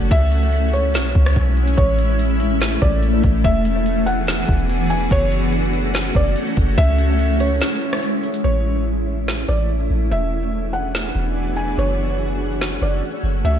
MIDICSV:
0, 0, Header, 1, 5, 480
1, 0, Start_track
1, 0, Key_signature, 3, "major"
1, 0, Tempo, 416667
1, 127, Time_signature, 4, 2, 24, 8
1, 15659, End_track
2, 0, Start_track
2, 0, Title_t, "Felt piano"
2, 0, Program_c, 0, 0
2, 129, Note_on_c, 0, 76, 116
2, 805, Note_off_c, 0, 76, 0
2, 845, Note_on_c, 0, 73, 86
2, 2000, Note_off_c, 0, 73, 0
2, 2043, Note_on_c, 0, 73, 101
2, 2496, Note_off_c, 0, 73, 0
2, 3246, Note_on_c, 0, 74, 91
2, 3475, Note_off_c, 0, 74, 0
2, 3967, Note_on_c, 0, 76, 106
2, 4644, Note_off_c, 0, 76, 0
2, 4681, Note_on_c, 0, 78, 75
2, 5598, Note_off_c, 0, 78, 0
2, 5645, Note_on_c, 0, 80, 80
2, 5874, Note_off_c, 0, 80, 0
2, 5898, Note_on_c, 0, 73, 105
2, 6344, Note_off_c, 0, 73, 0
2, 7099, Note_on_c, 0, 74, 88
2, 7321, Note_off_c, 0, 74, 0
2, 7806, Note_on_c, 0, 76, 122
2, 8484, Note_off_c, 0, 76, 0
2, 8527, Note_on_c, 0, 73, 83
2, 9681, Note_off_c, 0, 73, 0
2, 9725, Note_on_c, 0, 73, 93
2, 10177, Note_off_c, 0, 73, 0
2, 10927, Note_on_c, 0, 74, 85
2, 11155, Note_off_c, 0, 74, 0
2, 11652, Note_on_c, 0, 76, 97
2, 12326, Note_off_c, 0, 76, 0
2, 12362, Note_on_c, 0, 78, 73
2, 13279, Note_off_c, 0, 78, 0
2, 13324, Note_on_c, 0, 80, 77
2, 13553, Note_off_c, 0, 80, 0
2, 13577, Note_on_c, 0, 73, 92
2, 14024, Note_off_c, 0, 73, 0
2, 14774, Note_on_c, 0, 74, 81
2, 14999, Note_off_c, 0, 74, 0
2, 15491, Note_on_c, 0, 76, 110
2, 15659, Note_off_c, 0, 76, 0
2, 15659, End_track
3, 0, Start_track
3, 0, Title_t, "Ambient pad"
3, 0, Program_c, 1, 92
3, 127, Note_on_c, 1, 61, 72
3, 129, Note_on_c, 1, 56, 83
3, 129, Note_on_c, 1, 64, 91
3, 2029, Note_off_c, 1, 56, 0
3, 2047, Note_on_c, 1, 57, 76
3, 3929, Note_off_c, 1, 61, 0
3, 3929, Note_off_c, 1, 64, 0
3, 3948, Note_off_c, 1, 57, 0
3, 3967, Note_on_c, 1, 52, 82
3, 3967, Note_on_c, 1, 59, 76
3, 3967, Note_on_c, 1, 62, 71
3, 3967, Note_on_c, 1, 68, 90
3, 3968, Note_on_c, 1, 66, 71
3, 5868, Note_off_c, 1, 52, 0
3, 5868, Note_off_c, 1, 59, 0
3, 5868, Note_off_c, 1, 62, 0
3, 5868, Note_off_c, 1, 68, 0
3, 5887, Note_on_c, 1, 57, 81
3, 5889, Note_on_c, 1, 61, 74
3, 7769, Note_off_c, 1, 66, 0
3, 7788, Note_off_c, 1, 57, 0
3, 7806, Note_on_c, 1, 56, 78
3, 7808, Note_on_c, 1, 64, 86
3, 9690, Note_off_c, 1, 61, 0
3, 9707, Note_off_c, 1, 56, 0
3, 9708, Note_off_c, 1, 64, 0
3, 9727, Note_on_c, 1, 57, 77
3, 9727, Note_on_c, 1, 61, 69
3, 9727, Note_on_c, 1, 64, 85
3, 11628, Note_off_c, 1, 57, 0
3, 11628, Note_off_c, 1, 61, 0
3, 11628, Note_off_c, 1, 64, 0
3, 11648, Note_on_c, 1, 66, 70
3, 11649, Note_on_c, 1, 52, 79
3, 11649, Note_on_c, 1, 62, 68
3, 11649, Note_on_c, 1, 68, 87
3, 11650, Note_on_c, 1, 59, 72
3, 13549, Note_off_c, 1, 52, 0
3, 13549, Note_off_c, 1, 59, 0
3, 13549, Note_off_c, 1, 62, 0
3, 13549, Note_off_c, 1, 68, 0
3, 13566, Note_on_c, 1, 57, 80
3, 13568, Note_on_c, 1, 61, 74
3, 15449, Note_off_c, 1, 66, 0
3, 15467, Note_off_c, 1, 57, 0
3, 15659, Note_off_c, 1, 61, 0
3, 15659, End_track
4, 0, Start_track
4, 0, Title_t, "808-style bass"
4, 0, Program_c, 2, 38
4, 0, Note_on_c, 2, 30, 109
4, 119, Note_off_c, 2, 30, 0
4, 128, Note_on_c, 2, 37, 105
4, 1088, Note_on_c, 2, 35, 106
4, 1105, Note_off_c, 2, 37, 0
4, 1316, Note_off_c, 2, 35, 0
4, 1328, Note_on_c, 2, 37, 107
4, 1558, Note_off_c, 2, 37, 0
4, 1569, Note_on_c, 2, 35, 110
4, 2029, Note_off_c, 2, 35, 0
4, 2048, Note_on_c, 2, 33, 116
4, 3202, Note_off_c, 2, 33, 0
4, 3247, Note_on_c, 2, 33, 106
4, 3708, Note_off_c, 2, 33, 0
4, 3730, Note_on_c, 2, 33, 106
4, 3959, Note_off_c, 2, 33, 0
4, 3968, Note_on_c, 2, 28, 108
4, 5122, Note_off_c, 2, 28, 0
4, 5167, Note_on_c, 2, 28, 109
4, 5858, Note_off_c, 2, 28, 0
4, 5887, Note_on_c, 2, 30, 110
4, 7041, Note_off_c, 2, 30, 0
4, 7086, Note_on_c, 2, 30, 109
4, 7317, Note_off_c, 2, 30, 0
4, 7570, Note_on_c, 2, 30, 106
4, 7799, Note_off_c, 2, 30, 0
4, 7808, Note_on_c, 2, 37, 109
4, 8767, Note_off_c, 2, 37, 0
4, 9728, Note_on_c, 2, 33, 107
4, 10881, Note_off_c, 2, 33, 0
4, 10928, Note_on_c, 2, 33, 102
4, 11389, Note_off_c, 2, 33, 0
4, 11407, Note_on_c, 2, 33, 103
4, 11638, Note_off_c, 2, 33, 0
4, 11647, Note_on_c, 2, 28, 107
4, 12801, Note_off_c, 2, 28, 0
4, 12847, Note_on_c, 2, 28, 101
4, 13538, Note_off_c, 2, 28, 0
4, 13567, Note_on_c, 2, 30, 104
4, 14721, Note_off_c, 2, 30, 0
4, 14765, Note_on_c, 2, 30, 101
4, 14996, Note_off_c, 2, 30, 0
4, 15245, Note_on_c, 2, 30, 102
4, 15477, Note_off_c, 2, 30, 0
4, 15486, Note_on_c, 2, 37, 104
4, 15659, Note_off_c, 2, 37, 0
4, 15659, End_track
5, 0, Start_track
5, 0, Title_t, "Drums"
5, 127, Note_on_c, 9, 36, 118
5, 127, Note_on_c, 9, 42, 64
5, 242, Note_off_c, 9, 36, 0
5, 242, Note_off_c, 9, 42, 0
5, 368, Note_on_c, 9, 42, 77
5, 483, Note_off_c, 9, 42, 0
5, 607, Note_on_c, 9, 42, 65
5, 722, Note_off_c, 9, 42, 0
5, 847, Note_on_c, 9, 42, 68
5, 963, Note_off_c, 9, 42, 0
5, 1085, Note_on_c, 9, 42, 80
5, 1095, Note_on_c, 9, 38, 120
5, 1201, Note_off_c, 9, 42, 0
5, 1210, Note_off_c, 9, 38, 0
5, 1328, Note_on_c, 9, 36, 99
5, 1443, Note_off_c, 9, 36, 0
5, 1456, Note_on_c, 9, 37, 94
5, 1567, Note_on_c, 9, 42, 71
5, 1569, Note_on_c, 9, 36, 92
5, 1571, Note_off_c, 9, 37, 0
5, 1682, Note_off_c, 9, 42, 0
5, 1684, Note_off_c, 9, 36, 0
5, 1809, Note_on_c, 9, 42, 42
5, 1925, Note_off_c, 9, 42, 0
5, 1929, Note_on_c, 9, 42, 72
5, 2044, Note_off_c, 9, 42, 0
5, 2048, Note_on_c, 9, 36, 114
5, 2048, Note_on_c, 9, 42, 66
5, 2163, Note_off_c, 9, 42, 0
5, 2164, Note_off_c, 9, 36, 0
5, 2289, Note_on_c, 9, 42, 79
5, 2404, Note_off_c, 9, 42, 0
5, 2527, Note_on_c, 9, 42, 66
5, 2642, Note_off_c, 9, 42, 0
5, 2767, Note_on_c, 9, 42, 63
5, 2882, Note_off_c, 9, 42, 0
5, 3004, Note_on_c, 9, 42, 79
5, 3014, Note_on_c, 9, 38, 119
5, 3119, Note_off_c, 9, 42, 0
5, 3129, Note_off_c, 9, 38, 0
5, 3247, Note_on_c, 9, 36, 103
5, 3362, Note_off_c, 9, 36, 0
5, 3486, Note_on_c, 9, 42, 73
5, 3601, Note_off_c, 9, 42, 0
5, 3727, Note_on_c, 9, 42, 69
5, 3730, Note_on_c, 9, 36, 94
5, 3842, Note_off_c, 9, 42, 0
5, 3846, Note_off_c, 9, 36, 0
5, 3967, Note_on_c, 9, 42, 67
5, 3968, Note_on_c, 9, 36, 110
5, 4082, Note_off_c, 9, 42, 0
5, 4083, Note_off_c, 9, 36, 0
5, 4208, Note_on_c, 9, 42, 78
5, 4323, Note_off_c, 9, 42, 0
5, 4447, Note_on_c, 9, 42, 67
5, 4562, Note_off_c, 9, 42, 0
5, 4686, Note_on_c, 9, 42, 67
5, 4802, Note_off_c, 9, 42, 0
5, 4924, Note_on_c, 9, 42, 82
5, 4934, Note_on_c, 9, 38, 113
5, 5039, Note_off_c, 9, 42, 0
5, 5049, Note_off_c, 9, 38, 0
5, 5167, Note_on_c, 9, 36, 104
5, 5282, Note_off_c, 9, 36, 0
5, 5409, Note_on_c, 9, 42, 72
5, 5524, Note_off_c, 9, 42, 0
5, 5649, Note_on_c, 9, 42, 68
5, 5764, Note_off_c, 9, 42, 0
5, 5887, Note_on_c, 9, 42, 65
5, 5888, Note_on_c, 9, 36, 115
5, 6002, Note_off_c, 9, 42, 0
5, 6003, Note_off_c, 9, 36, 0
5, 6127, Note_on_c, 9, 42, 81
5, 6242, Note_off_c, 9, 42, 0
5, 6366, Note_on_c, 9, 42, 68
5, 6481, Note_off_c, 9, 42, 0
5, 6606, Note_on_c, 9, 42, 67
5, 6721, Note_off_c, 9, 42, 0
5, 6842, Note_on_c, 9, 42, 83
5, 6852, Note_on_c, 9, 38, 113
5, 6957, Note_off_c, 9, 42, 0
5, 6967, Note_off_c, 9, 38, 0
5, 7087, Note_on_c, 9, 36, 100
5, 7202, Note_off_c, 9, 36, 0
5, 7326, Note_on_c, 9, 42, 74
5, 7442, Note_off_c, 9, 42, 0
5, 7568, Note_on_c, 9, 42, 69
5, 7571, Note_on_c, 9, 36, 97
5, 7683, Note_off_c, 9, 42, 0
5, 7686, Note_off_c, 9, 36, 0
5, 7807, Note_on_c, 9, 36, 111
5, 7807, Note_on_c, 9, 42, 65
5, 7922, Note_off_c, 9, 42, 0
5, 7923, Note_off_c, 9, 36, 0
5, 8046, Note_on_c, 9, 42, 77
5, 8162, Note_off_c, 9, 42, 0
5, 8286, Note_on_c, 9, 42, 68
5, 8401, Note_off_c, 9, 42, 0
5, 8526, Note_on_c, 9, 42, 65
5, 8641, Note_off_c, 9, 42, 0
5, 8763, Note_on_c, 9, 42, 78
5, 8773, Note_on_c, 9, 38, 120
5, 8879, Note_off_c, 9, 42, 0
5, 8888, Note_off_c, 9, 38, 0
5, 9134, Note_on_c, 9, 37, 97
5, 9247, Note_on_c, 9, 42, 73
5, 9249, Note_off_c, 9, 37, 0
5, 9362, Note_off_c, 9, 42, 0
5, 9488, Note_on_c, 9, 42, 41
5, 9603, Note_off_c, 9, 42, 0
5, 9607, Note_on_c, 9, 42, 69
5, 9722, Note_off_c, 9, 42, 0
5, 10694, Note_on_c, 9, 38, 108
5, 10809, Note_off_c, 9, 38, 0
5, 12612, Note_on_c, 9, 38, 110
5, 12728, Note_off_c, 9, 38, 0
5, 14532, Note_on_c, 9, 38, 112
5, 14647, Note_off_c, 9, 38, 0
5, 15659, End_track
0, 0, End_of_file